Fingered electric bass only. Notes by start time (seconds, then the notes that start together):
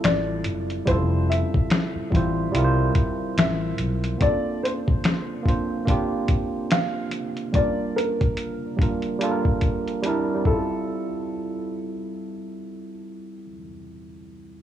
0.04 A1
0.46 F#1
0.88 F1
1.95 muted fingered electric bass stroke
2.12 A1
2.54 C2
3.38 A1
3.79 B1